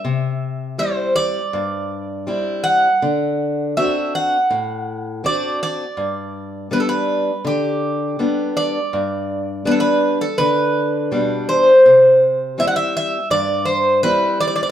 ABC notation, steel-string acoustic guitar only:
X:1
M:4/4
L:1/8
Q:1/4=82
K:G
V:1 name="Steel-string acoustic guitar"
C,2 [G,CE]2 G,,2 [G,CE]2 | D,2 [CDF]2 A,,2 [CDF]2 | G,,2 [G,B,D]2 D,2 [G,B,D]2 | G,,2 [G,B,D]2 D,2 [B,,G,D]2 |
C,2 [G,CE]2 G,,2 [G,CE]2 |]